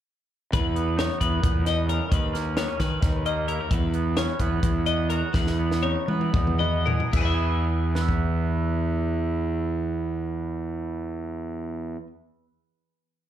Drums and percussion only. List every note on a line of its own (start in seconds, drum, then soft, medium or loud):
0.53 kick medium
0.53 closed hi-hat medium
0.76 closed hi-hat medium
0.99 snare medium
0.99 closed hi-hat medium
1.21 kick medium
1.21 closed hi-hat medium
1.43 kick loud
1.43 closed hi-hat medium
1.66 snare soft
1.66 closed hi-hat medium
1.89 closed hi-hat medium
2.12 kick medium
2.12 closed hi-hat medium
2.35 snare soft
2.35 closed hi-hat soft
2.57 snare medium
2.57 closed hi-hat medium
2.80 kick medium
2.80 snare soft
2.80 closed hi-hat medium
3.02 kick loud
3.02 snare soft
3.02 closed hi-hat medium
3.26 closed hi-hat medium
3.48 closed hi-hat medium
3.71 kick loud
3.71 closed hi-hat medium
3.94 closed hi-hat soft
4.17 snare medium
4.17 closed hi-hat medium
4.39 kick medium
4.39 closed hi-hat medium
4.63 kick medium
4.63 closed hi-hat medium
4.86 closed hi-hat medium
5.10 closed hi-hat medium
5.34 kick medium
5.34 snare soft
5.47 snare soft
5.71 snare medium
5.84 high tom medium
6.08 mid tom medium
6.21 mid tom medium
6.34 kick loud
6.47 mid tom medium
6.60 mid tom medium
6.87 floor tom medium
7.00 floor tom medium
7.13 kick medium
7.13 crash medium
7.95 snare soft
8.09 kick medium